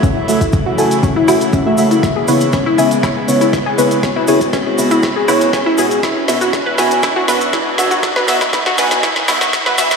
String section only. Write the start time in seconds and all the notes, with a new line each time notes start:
Already playing: C#3 E3 F#3 A3 E4
2.03 G#3 B3
4.03 F#4
6.03 B2 E3 F#3 E4 F#4
8.03 D#3